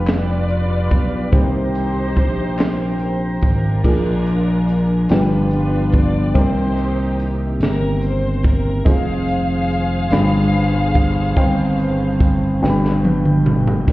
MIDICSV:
0, 0, Header, 1, 6, 480
1, 0, Start_track
1, 0, Key_signature, -3, "minor"
1, 0, Tempo, 836820
1, 762, Time_signature, 6, 3, 24, 8
1, 7987, End_track
2, 0, Start_track
2, 0, Title_t, "String section"
2, 0, Program_c, 0, 48
2, 56, Note_on_c, 0, 71, 67
2, 59, Note_on_c, 0, 65, 71
2, 59, Note_on_c, 0, 74, 96
2, 747, Note_off_c, 0, 71, 0
2, 748, Note_off_c, 0, 65, 0
2, 771, Note_off_c, 0, 74, 0
2, 778, Note_on_c, 0, 63, 56
2, 778, Note_on_c, 0, 67, 66
2, 783, Note_on_c, 0, 72, 90
2, 1510, Note_on_c, 0, 70, 64
2, 1708, Note_off_c, 0, 63, 0
2, 1709, Note_off_c, 0, 67, 0
2, 1711, Note_off_c, 0, 72, 0
2, 1721, Note_off_c, 0, 70, 0
2, 1747, Note_on_c, 0, 72, 66
2, 1975, Note_off_c, 0, 72, 0
2, 1977, Note_on_c, 0, 65, 55
2, 1980, Note_on_c, 0, 62, 64
2, 1994, Note_on_c, 0, 70, 83
2, 2908, Note_off_c, 0, 65, 0
2, 2910, Note_off_c, 0, 62, 0
2, 2937, Note_on_c, 0, 65, 66
2, 2939, Note_on_c, 0, 62, 65
2, 2940, Note_off_c, 0, 70, 0
2, 2945, Note_on_c, 0, 71, 78
2, 3175, Note_off_c, 0, 71, 0
2, 3187, Note_on_c, 0, 71, 82
2, 3399, Note_off_c, 0, 71, 0
2, 3432, Note_on_c, 0, 74, 85
2, 3628, Note_off_c, 0, 65, 0
2, 3629, Note_off_c, 0, 62, 0
2, 3651, Note_on_c, 0, 63, 66
2, 3653, Note_on_c, 0, 67, 65
2, 3657, Note_on_c, 0, 72, 85
2, 3658, Note_off_c, 0, 74, 0
2, 4190, Note_off_c, 0, 72, 0
2, 4344, Note_off_c, 0, 63, 0
2, 4345, Note_off_c, 0, 67, 0
2, 4368, Note_on_c, 0, 70, 93
2, 4589, Note_off_c, 0, 70, 0
2, 4611, Note_on_c, 0, 72, 90
2, 4847, Note_off_c, 0, 72, 0
2, 4852, Note_on_c, 0, 70, 83
2, 5084, Note_on_c, 0, 77, 115
2, 5085, Note_on_c, 0, 68, 77
2, 5085, Note_on_c, 0, 72, 73
2, 5088, Note_off_c, 0, 70, 0
2, 7458, Note_off_c, 0, 68, 0
2, 7458, Note_off_c, 0, 72, 0
2, 7481, Note_off_c, 0, 77, 0
2, 7987, End_track
3, 0, Start_track
3, 0, Title_t, "Upright piano"
3, 0, Program_c, 1, 0
3, 0, Control_c, 1, 64, 127
3, 0, Note_on_c, 1, 43, 47
3, 0, Note_on_c, 1, 59, 56
3, 0, Note_on_c, 1, 62, 47
3, 0, Note_on_c, 1, 65, 49
3, 0, Note_on_c, 1, 67, 57
3, 735, Note_off_c, 1, 59, 0
3, 738, Note_off_c, 1, 62, 0
3, 741, Note_off_c, 1, 65, 0
3, 742, Note_off_c, 1, 67, 0
3, 754, Note_on_c, 1, 58, 52
3, 755, Note_on_c, 1, 60, 44
3, 758, Note_on_c, 1, 51, 48
3, 762, Note_on_c, 1, 48, 51
3, 763, Note_on_c, 1, 67, 57
3, 770, Control_c, 1, 64, 0
3, 774, Note_off_c, 1, 43, 0
3, 859, Control_c, 1, 64, 127
3, 1460, Note_off_c, 1, 48, 0
3, 2177, Note_off_c, 1, 58, 0
3, 2178, Note_off_c, 1, 60, 0
3, 2179, Note_off_c, 1, 51, 0
3, 2181, Note_off_c, 1, 67, 0
3, 2201, Note_on_c, 1, 58, 58
3, 2206, Note_on_c, 1, 62, 46
3, 2206, Note_on_c, 1, 65, 49
3, 2207, Note_on_c, 1, 46, 53
3, 2209, Note_on_c, 1, 68, 54
3, 2212, Control_c, 1, 64, 0
3, 2297, Control_c, 1, 64, 127
3, 2903, Note_off_c, 1, 46, 0
3, 2911, Note_off_c, 1, 62, 0
3, 2913, Note_off_c, 1, 65, 0
3, 2919, Note_on_c, 1, 62, 49
3, 2920, Note_on_c, 1, 59, 58
3, 2922, Note_on_c, 1, 65, 53
3, 2923, Note_off_c, 1, 58, 0
3, 2923, Note_on_c, 1, 43, 56
3, 2926, Note_on_c, 1, 67, 61
3, 2927, Note_off_c, 1, 68, 0
3, 2932, Control_c, 1, 64, 0
3, 3032, Control_c, 1, 64, 127
3, 3621, Note_off_c, 1, 43, 0
3, 3634, Note_off_c, 1, 67, 0
3, 3634, Note_on_c, 1, 60, 54
3, 3637, Note_on_c, 1, 63, 49
3, 3641, Note_on_c, 1, 48, 59
3, 3642, Note_off_c, 1, 59, 0
3, 3642, Note_off_c, 1, 62, 0
3, 3642, Note_on_c, 1, 67, 50
3, 3643, Note_off_c, 1, 65, 0
3, 3649, Note_on_c, 1, 70, 58
3, 3652, Control_c, 1, 64, 0
3, 3764, Control_c, 1, 64, 127
3, 4339, Note_off_c, 1, 48, 0
3, 5055, Note_off_c, 1, 60, 0
3, 5056, Note_off_c, 1, 63, 0
3, 5059, Note_off_c, 1, 67, 0
3, 5062, Note_off_c, 1, 70, 0
3, 5076, Note_on_c, 1, 63, 55
3, 5076, Note_on_c, 1, 68, 51
3, 5078, Note_on_c, 1, 65, 51
3, 5084, Note_on_c, 1, 72, 59
3, 5090, Control_c, 1, 64, 0
3, 5195, Control_c, 1, 64, 127
3, 5795, Note_off_c, 1, 65, 0
3, 5799, Note_off_c, 1, 63, 0
3, 5799, Note_off_c, 1, 68, 0
3, 5799, Note_on_c, 1, 62, 74
3, 5803, Note_off_c, 1, 72, 0
3, 5803, Note_on_c, 1, 43, 71
3, 5804, Note_on_c, 1, 55, 61
3, 5804, Note_on_c, 1, 65, 67
3, 5806, Note_on_c, 1, 83, 81
3, 5809, Control_c, 1, 64, 0
3, 5927, Control_c, 1, 64, 127
3, 6499, Note_off_c, 1, 43, 0
3, 6519, Note_off_c, 1, 62, 0
3, 6521, Note_on_c, 1, 60, 68
3, 6521, Note_on_c, 1, 63, 63
3, 6521, Note_on_c, 1, 79, 63
3, 6522, Note_off_c, 1, 55, 0
3, 6522, Note_off_c, 1, 65, 0
3, 6523, Note_off_c, 1, 83, 0
3, 6523, Note_on_c, 1, 43, 70
3, 6528, Control_c, 1, 64, 0
3, 6529, Note_on_c, 1, 72, 71
3, 6634, Control_c, 1, 64, 127
3, 7218, Note_off_c, 1, 43, 0
3, 7232, Note_off_c, 1, 79, 0
3, 7237, Note_on_c, 1, 47, 68
3, 7238, Note_on_c, 1, 62, 62
3, 7240, Note_off_c, 1, 60, 0
3, 7240, Note_off_c, 1, 63, 0
3, 7240, Note_on_c, 1, 43, 68
3, 7241, Note_on_c, 1, 79, 61
3, 7244, Note_off_c, 1, 72, 0
3, 7246, Note_on_c, 1, 68, 55
3, 7249, Control_c, 1, 64, 0
3, 7281, Note_off_c, 1, 68, 0
3, 7284, Note_on_c, 1, 83, 72
3, 7334, Control_c, 1, 64, 127
3, 7936, Note_off_c, 1, 43, 0
3, 7957, Note_off_c, 1, 47, 0
3, 7958, Note_off_c, 1, 62, 0
3, 7958, Note_on_c, 1, 51, 45
3, 7960, Note_off_c, 1, 79, 0
3, 7962, Note_on_c, 1, 58, 43
3, 7968, Control_c, 1, 64, 0
3, 7969, Note_on_c, 1, 62, 51
3, 7981, Note_off_c, 1, 83, 0
3, 7987, Note_off_c, 1, 51, 0
3, 7987, Note_off_c, 1, 58, 0
3, 7987, Note_off_c, 1, 62, 0
3, 7987, End_track
4, 0, Start_track
4, 0, Title_t, "Tonewheel organ"
4, 0, Program_c, 2, 16
4, 0, Note_on_c, 2, 67, 57
4, 0, Note_on_c, 2, 74, 49
4, 0, Note_on_c, 2, 77, 50
4, 0, Note_on_c, 2, 83, 59
4, 740, Note_off_c, 2, 77, 0
4, 749, Note_off_c, 2, 74, 0
4, 749, Note_off_c, 2, 83, 0
4, 750, Note_off_c, 2, 67, 0
4, 765, Note_on_c, 2, 67, 54
4, 766, Note_on_c, 2, 72, 45
4, 766, Note_on_c, 2, 79, 50
4, 770, Note_on_c, 2, 82, 62
4, 2191, Note_off_c, 2, 67, 0
4, 2191, Note_off_c, 2, 72, 0
4, 2192, Note_off_c, 2, 79, 0
4, 2193, Note_off_c, 2, 82, 0
4, 2205, Note_on_c, 2, 58, 50
4, 2208, Note_on_c, 2, 53, 58
4, 2210, Note_on_c, 2, 68, 62
4, 2213, Note_on_c, 2, 62, 49
4, 2918, Note_off_c, 2, 58, 0
4, 2920, Note_off_c, 2, 68, 0
4, 2924, Note_on_c, 2, 67, 61
4, 2925, Note_on_c, 2, 59, 46
4, 3632, Note_off_c, 2, 53, 0
4, 3634, Note_off_c, 2, 62, 0
4, 3636, Note_off_c, 2, 67, 0
4, 3637, Note_off_c, 2, 59, 0
4, 3640, Note_on_c, 2, 51, 63
4, 3641, Note_on_c, 2, 58, 55
4, 3642, Note_on_c, 2, 60, 55
4, 3643, Note_on_c, 2, 67, 62
4, 5067, Note_off_c, 2, 58, 0
4, 5068, Note_off_c, 2, 67, 0
4, 5083, Note_on_c, 2, 65, 66
4, 5084, Note_on_c, 2, 56, 52
4, 5779, Note_off_c, 2, 51, 0
4, 5779, Note_off_c, 2, 60, 0
4, 5795, Note_off_c, 2, 56, 0
4, 5811, Note_on_c, 2, 47, 47
4, 5811, Note_on_c, 2, 50, 60
4, 5813, Note_on_c, 2, 55, 47
4, 6507, Note_off_c, 2, 65, 0
4, 6518, Note_off_c, 2, 47, 0
4, 6519, Note_off_c, 2, 50, 0
4, 6520, Note_off_c, 2, 55, 0
4, 6530, Note_on_c, 2, 79, 69
4, 6532, Note_on_c, 2, 60, 57
4, 6533, Note_on_c, 2, 51, 59
4, 7238, Note_off_c, 2, 60, 0
4, 7238, Note_off_c, 2, 79, 0
4, 7239, Note_off_c, 2, 51, 0
4, 7248, Note_on_c, 2, 50, 50
4, 7252, Note_on_c, 2, 47, 47
4, 7253, Note_on_c, 2, 79, 62
4, 7956, Note_off_c, 2, 50, 0
4, 7958, Note_off_c, 2, 47, 0
4, 7958, Note_off_c, 2, 79, 0
4, 7962, Note_on_c, 2, 51, 54
4, 7965, Note_on_c, 2, 58, 52
4, 7965, Note_on_c, 2, 60, 54
4, 7967, Note_on_c, 2, 67, 61
4, 7987, Note_off_c, 2, 51, 0
4, 7987, Note_off_c, 2, 58, 0
4, 7987, Note_off_c, 2, 60, 0
4, 7987, Note_off_c, 2, 67, 0
4, 7987, End_track
5, 0, Start_track
5, 0, Title_t, "Slap bass"
5, 0, Program_c, 3, 36
5, 0, Note_on_c, 3, 29, 68
5, 500, Note_off_c, 3, 29, 0
5, 524, Note_on_c, 3, 35, 80
5, 744, Note_off_c, 3, 35, 0
5, 759, Note_on_c, 3, 36, 87
5, 1219, Note_off_c, 3, 36, 0
5, 1243, Note_on_c, 3, 34, 78
5, 1941, Note_off_c, 3, 34, 0
5, 1965, Note_on_c, 3, 32, 70
5, 2185, Note_off_c, 3, 32, 0
5, 2208, Note_on_c, 3, 34, 83
5, 2903, Note_off_c, 3, 34, 0
5, 2927, Note_on_c, 3, 31, 80
5, 3622, Note_off_c, 3, 31, 0
5, 3645, Note_on_c, 3, 36, 88
5, 4341, Note_off_c, 3, 36, 0
5, 4358, Note_on_c, 3, 31, 70
5, 5057, Note_off_c, 3, 31, 0
5, 5085, Note_on_c, 3, 29, 89
5, 5780, Note_off_c, 3, 29, 0
5, 5799, Note_on_c, 3, 31, 83
5, 6497, Note_off_c, 3, 31, 0
5, 6523, Note_on_c, 3, 31, 85
5, 7218, Note_off_c, 3, 31, 0
5, 7243, Note_on_c, 3, 31, 80
5, 7938, Note_off_c, 3, 31, 0
5, 7963, Note_on_c, 3, 36, 90
5, 7987, Note_off_c, 3, 36, 0
5, 7987, End_track
6, 0, Start_track
6, 0, Title_t, "Drums"
6, 36, Note_on_c, 9, 42, 66
6, 41, Note_on_c, 9, 39, 77
6, 49, Note_on_c, 9, 38, 95
6, 93, Note_off_c, 9, 42, 0
6, 99, Note_off_c, 9, 39, 0
6, 107, Note_off_c, 9, 38, 0
6, 278, Note_on_c, 9, 42, 40
6, 335, Note_off_c, 9, 42, 0
6, 521, Note_on_c, 9, 42, 42
6, 524, Note_on_c, 9, 36, 78
6, 578, Note_off_c, 9, 42, 0
6, 581, Note_off_c, 9, 36, 0
6, 759, Note_on_c, 9, 42, 67
6, 762, Note_on_c, 9, 36, 86
6, 816, Note_off_c, 9, 42, 0
6, 819, Note_off_c, 9, 36, 0
6, 1005, Note_on_c, 9, 42, 42
6, 1062, Note_off_c, 9, 42, 0
6, 1243, Note_on_c, 9, 36, 76
6, 1244, Note_on_c, 9, 42, 42
6, 1301, Note_off_c, 9, 36, 0
6, 1301, Note_off_c, 9, 42, 0
6, 1480, Note_on_c, 9, 42, 66
6, 1483, Note_on_c, 9, 39, 68
6, 1493, Note_on_c, 9, 38, 104
6, 1537, Note_off_c, 9, 42, 0
6, 1540, Note_off_c, 9, 39, 0
6, 1550, Note_off_c, 9, 38, 0
6, 1717, Note_on_c, 9, 42, 44
6, 1775, Note_off_c, 9, 42, 0
6, 1959, Note_on_c, 9, 42, 42
6, 1965, Note_on_c, 9, 36, 82
6, 2017, Note_off_c, 9, 42, 0
6, 2023, Note_off_c, 9, 36, 0
6, 2205, Note_on_c, 9, 36, 84
6, 2207, Note_on_c, 9, 49, 71
6, 2262, Note_off_c, 9, 36, 0
6, 2264, Note_off_c, 9, 49, 0
6, 2446, Note_on_c, 9, 42, 47
6, 2504, Note_off_c, 9, 42, 0
6, 2688, Note_on_c, 9, 42, 48
6, 2745, Note_off_c, 9, 42, 0
6, 2922, Note_on_c, 9, 42, 75
6, 2935, Note_on_c, 9, 38, 104
6, 2979, Note_off_c, 9, 42, 0
6, 2992, Note_off_c, 9, 38, 0
6, 3160, Note_on_c, 9, 42, 46
6, 3218, Note_off_c, 9, 42, 0
6, 3399, Note_on_c, 9, 42, 46
6, 3405, Note_on_c, 9, 36, 77
6, 3456, Note_off_c, 9, 42, 0
6, 3462, Note_off_c, 9, 36, 0
6, 3644, Note_on_c, 9, 36, 87
6, 3645, Note_on_c, 9, 42, 72
6, 3701, Note_off_c, 9, 36, 0
6, 3702, Note_off_c, 9, 42, 0
6, 3886, Note_on_c, 9, 42, 47
6, 3943, Note_off_c, 9, 42, 0
6, 4128, Note_on_c, 9, 42, 48
6, 4185, Note_off_c, 9, 42, 0
6, 4363, Note_on_c, 9, 42, 75
6, 4376, Note_on_c, 9, 38, 94
6, 4420, Note_off_c, 9, 42, 0
6, 4434, Note_off_c, 9, 38, 0
6, 4601, Note_on_c, 9, 42, 46
6, 4658, Note_off_c, 9, 42, 0
6, 4837, Note_on_c, 9, 42, 45
6, 4844, Note_on_c, 9, 36, 80
6, 4895, Note_off_c, 9, 42, 0
6, 4901, Note_off_c, 9, 36, 0
6, 5082, Note_on_c, 9, 36, 98
6, 5082, Note_on_c, 9, 42, 77
6, 5139, Note_off_c, 9, 36, 0
6, 5140, Note_off_c, 9, 42, 0
6, 5323, Note_on_c, 9, 42, 47
6, 5380, Note_off_c, 9, 42, 0
6, 5566, Note_on_c, 9, 42, 50
6, 5623, Note_off_c, 9, 42, 0
6, 5798, Note_on_c, 9, 42, 76
6, 5811, Note_on_c, 9, 38, 116
6, 5855, Note_off_c, 9, 42, 0
6, 5868, Note_off_c, 9, 38, 0
6, 6039, Note_on_c, 9, 42, 47
6, 6097, Note_off_c, 9, 42, 0
6, 6279, Note_on_c, 9, 42, 48
6, 6283, Note_on_c, 9, 36, 83
6, 6336, Note_off_c, 9, 42, 0
6, 6340, Note_off_c, 9, 36, 0
6, 6519, Note_on_c, 9, 42, 77
6, 6520, Note_on_c, 9, 36, 95
6, 6576, Note_off_c, 9, 42, 0
6, 6578, Note_off_c, 9, 36, 0
6, 6763, Note_on_c, 9, 42, 47
6, 6821, Note_off_c, 9, 42, 0
6, 7000, Note_on_c, 9, 36, 86
6, 7001, Note_on_c, 9, 42, 50
6, 7058, Note_off_c, 9, 36, 0
6, 7058, Note_off_c, 9, 42, 0
6, 7250, Note_on_c, 9, 38, 59
6, 7308, Note_off_c, 9, 38, 0
6, 7370, Note_on_c, 9, 38, 45
6, 7427, Note_off_c, 9, 38, 0
6, 7484, Note_on_c, 9, 48, 69
6, 7541, Note_off_c, 9, 48, 0
6, 7603, Note_on_c, 9, 47, 65
6, 7660, Note_off_c, 9, 47, 0
6, 7721, Note_on_c, 9, 45, 89
6, 7778, Note_off_c, 9, 45, 0
6, 7844, Note_on_c, 9, 43, 88
6, 7901, Note_off_c, 9, 43, 0
6, 7960, Note_on_c, 9, 36, 99
6, 7961, Note_on_c, 9, 49, 74
6, 7987, Note_off_c, 9, 36, 0
6, 7987, Note_off_c, 9, 49, 0
6, 7987, End_track
0, 0, End_of_file